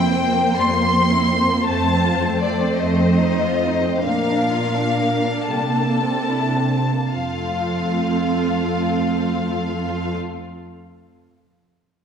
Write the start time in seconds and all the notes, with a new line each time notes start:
Already playing: F2 A#3 C4 E4 C5 G5
0.10 C4
0.32 A#3
0.55 F2 G3 C6
0.72 A#3
0.92 C4
1.11 E4
1.28 C4
1.46 A#3
1.63 F2 A3 C4 C5 A5
1.84 C4
2.02 F4
2.22 C4
2.42 A3 D5
2.62 C4
2.80 F2 A3 D#5
3.01 C4
3.20 D#4
3.42 F4
3.65 D#4
3.84 C4
4.04 A#2 A#3 D4 A#4 F5
4.28 D4
4.51 F4
4.75 D4
5.00 A#3
5.24 D4
5.45 C3 G3 A4 A5
5.75 A#3
6.00 C4
6.29 E4
6.57 C4
6.91 A#3
7.16 F2 A3 C4 F5
7.20 F4 A4